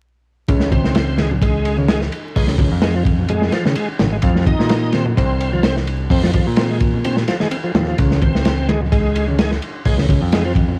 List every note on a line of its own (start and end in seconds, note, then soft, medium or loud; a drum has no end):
0.48 2.08 C#2 medium
0.48 0.71 C#3 medium
0.48 kick loud
0.48 ride medium
0.60 snare soft
0.72 1.17 C4 medium
0.72 kick medium
0.72 ride medium
0.72 high conga medium
0.84 snare medium
0.95 snare loud
0.95 ride medium
1.18 1.30 G#3 medium
1.18 snare soft
1.18 ride medium
1.18 high conga medium
1.31 low conga medium
1.42 1.77 G#3 medium
1.42 kick loud
1.42 ride medium
1.65 ride medium
1.78 1.88 C#3 medium
1.78 high conga medium
1.89 2.01 G#3 medium
1.89 snare loud
1.89 ride medium
2.01 snare soft
2.12 ride medium
2.36 2.67 C#2 medium
2.36 2.47 G#3 loud
2.36 kick loud
2.36 open hi-hat medium
2.47 2.56 C#3 medium
2.47 snare soft
2.58 2.71 C#3 medium
2.58 kick loud
2.58 ride medium
2.58 high conga medium
2.72 3.49 F2 medium
2.82 2.95 G#3 medium
2.82 snare loud
2.82 ride medium
2.95 3.03 F3 medium
3.05 kick medium
3.05 ride medium
3.05 high conga medium
3.19 low conga medium
3.28 3.52 G#3 loud
3.28 ride medium
3.28 low conga medium
3.42 snare soft
3.52 3.64 F3 medium
3.52 snare soft
3.52 ride medium
3.65 3.76 C#3 loud
3.65 snare medium
3.65 high conga medium
3.75 3.88 G#3 medium
3.75 ride medium
3.99 4.18 G#1 medium
3.99 4.09 C#3 medium
3.99 snare loud
3.99 ride medium
3.99 low conga medium
4.12 4.17 G#3 medium
4.22 4.54 F2 medium
4.22 4.46 F3 loud
4.22 kick loud
4.22 ride medium
4.36 snare soft
4.46 4.92 D#4 medium
4.46 kick medium
4.46 ride medium
4.46 high conga medium
4.59 5.13 A#2 loud
4.59 snare medium
4.69 snare loud
4.69 ride medium
4.92 5.05 C4 medium
4.92 snare soft
4.92 ride medium
4.92 high conga medium
5.05 low conga medium
5.17 6.07 C2 loud
5.17 5.52 C4 loud
5.17 kick loud
5.17 ride medium
5.40 ride medium
5.53 5.63 F3 medium
5.53 high conga medium
5.63 5.76 C4 loud
5.63 snare loud
5.63 ride medium
5.77 snare soft
5.87 ride medium
6.10 6.42 F2 loud
6.10 6.22 C4 loud
6.10 kick loud
6.10 open hi-hat medium
6.23 6.31 F3 medium
6.23 snare soft
6.33 6.46 F3 medium
6.33 kick medium
6.33 ride medium
6.33 high conga medium
6.47 7.24 A#2 medium
6.56 6.70 C4 loud
6.56 snare loud
6.56 ride medium
6.70 6.78 G#3 medium
6.80 kick medium
6.80 ride medium
6.80 high conga medium
6.94 low conga medium
7.04 7.16 C4 loud
7.04 ride medium
7.04 low conga medium
7.17 snare soft
7.28 7.37 F3 medium
7.28 snare soft
7.28 ride medium
7.40 7.48 G#3 medium
7.40 snare medium
7.40 high conga medium
7.51 7.57 C4 medium
7.51 ride medium
7.64 7.72 F3 medium
7.75 7.93 D#2 medium
7.75 7.86 F3 medium
7.75 snare loud
7.75 ride medium
7.75 low conga medium
7.88 7.97 F3 medium
7.98 9.58 C#2 loud
7.98 8.21 C#3 loud
7.98 kick loud
7.98 ride medium
8.11 snare soft
8.22 8.68 C4 medium
8.22 kick medium
8.22 ride medium
8.22 high conga medium
8.35 snare medium
8.45 snare loud
8.45 ride medium
8.69 8.81 G#3 loud
8.69 snare soft
8.69 ride medium
8.69 high conga medium
8.81 low conga medium
8.92 9.27 G#3 loud
8.92 kick medium
8.92 ride medium
9.16 ride medium
9.28 9.38 C#3 medium
9.28 high conga medium
9.39 9.51 G#3 loud
9.39 snare loud
9.39 ride medium
9.51 snare soft
9.62 ride medium
9.85 10.17 C#2 medium
9.85 9.97 G#3 loud
9.85 kick loud
9.85 open hi-hat medium
9.98 10.06 C#3 medium
9.98 snare medium
10.09 10.21 C#3 medium
10.09 kick medium
10.09 ride medium
10.09 high conga medium
10.22 10.79 F2 medium
10.32 10.44 G#3 loud
10.32 snare loud
10.32 ride medium
10.45 10.53 F3 medium
10.55 kick medium
10.55 ride medium
10.55 high conga medium
10.68 low conga medium